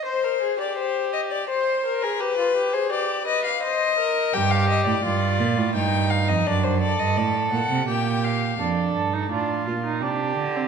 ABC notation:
X:1
M:3/4
L:1/16
Q:1/4=84
K:Cm
V:1 name="Violin"
c3 d c2 e d c3 B | =B3 c d2 e f e4 | g f e d4- d g2 f e | d c d e d2 ^f2 g2 =f2 |
z12 |]
V:2 name="Violin"
c B A G4- G c2 B A | G F G A G2 =B2 c2 _B2 | G4 F4 E4 | D2 =A6 G4 |
=A4 F4 G4 |]
V:3 name="Viola"
z12 | z12 | z12 | z12 |
D3 E D2 F E D3 C |]
V:4 name="Cello" clef=bass
z12 | z12 | G,,3 =A,, G,,2 B,, A,, G,,3 F,, | ^F,,3 G,, =A,,2 B,, C, B,,4 |
F,,2 G,,2 =A,,2 B,,2 C,2 D,2 |]